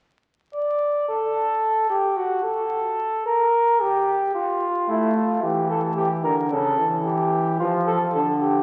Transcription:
0.54 flugelhorn D5
1.09 flugelhorn A4
1.90 flugelhorn G4
2.17 flugelhorn F#4
2.44 flugelhorn A4
3.26 flugelhorn A#4
3.80 flugelhorn G4
4.35 flugelhorn F4
4.89 trombone A3, flugelhorn E4
5.16 flugelhorn F4
5.43 trombone E3, flugelhorn G4
5.70 flugelhorn A4
5.97 flugelhorn G4
6.24 trombone D3, flugelhorn A#4
6.51 trombone C#3, flugelhorn A4
6.79 trombone E3
7.05 flugelhorn G4
7.60 trombone F3, flugelhorn F4
7.87 flugelhorn A4
8.14 trombone D3, flugelhorn A4
8.41 flugelhorn G4

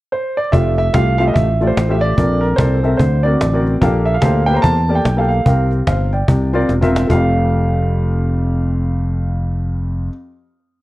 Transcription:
0.12 grand piano C5
0.37 grand piano D5
0.52 fingered electric bass F1, upright piano A3 F4 G4 E5, grand piano E5, cajon bass
0.78 grand piano E5, cajon slap
0.93 fingered electric bass C2, upright piano A3 F4 G4 F5, grand piano F5, cajon bass, cajon slap
1.18 upright piano A3 F4 G4 E5, grand piano F5, cajon slap
1.28 grand piano D#5
1.34 fingered electric bass A1, grand piano E5, cajon bass
1.60 upright piano A3 F4 G4 D5, cajon slap
1.67 grand piano C5
1.77 fingered electric bass A1, cajon slap
1.88 upright piano A3 F4 G4 E5, grand piano E5
2.01 grand piano D5, cajon slap
2.17 fingered electric bass A#1, upright piano A#2 C4 A4 A#4 D5, cajon bass
2.41 grand piano A#4, cajon slap
2.56 fingered electric bass C2, upright piano C4 A4 A#4 D5, grand piano C5, cajon bass, cajon slap
2.83 upright piano C4 A4 A#4 E5, cajon slap
2.97 fingered electric bass D2, upright piano D3, grand piano C5, cajon bass
3.23 upright piano C4 F#4 A#4 D5, grand piano D5, cajon slap
3.41 fingered electric bass A1, cajon slap
3.53 upright piano C4 F#4 A#4 D5
3.66 cajon slap
3.81 fingered electric bass A#1, upright piano A#2 A#3 G4 A4 F5, cajon bass
4.05 grand piano E5, cajon slap
4.14 grand piano F5
4.22 fingered electric bass D2, upright piano A#3 G4 A4 C5, cajon bass, cajon slap
4.46 upright piano A#3 G4 A4 B4, grand piano G5, cajon slap
4.54 upright piano C5, grand piano A#5
4.62 fingered electric bass E2, grand piano A5, cajon bass
4.88 upright piano A#3 G4 A4 D5, cajon slap
4.95 grand piano G5
5.05 fingered electric bass B1, cajon slap
5.17 upright piano A#3 G4 A4 F5, grand piano G5
5.29 grand piano F5, cajon slap
5.46 fingered electric bass C2, upright piano C3 C4 G4 A#4 F5, cajon bass
5.72 cajon slap
5.87 fingered electric bass G1, upright piano C5 F5, cajon bass, cajon slap
6.13 upright piano D5 G5, cajon slap
6.28 fingered electric bass C2, upright piano C3, cajon bass
6.53 upright piano C4 F4 A#4 D5, cajon slap
6.61 cajon slap
6.69 fingered electric bass E1, cajon slap
6.81 upright piano C4 F4 A#4 E5, cajon bass
6.95 cajon slap
6.96 cajon slap
7.07 fingered electric bass F1, upright piano F2 A3 F4, grand piano F5, cajon bass
7.12 upright piano G4 F5

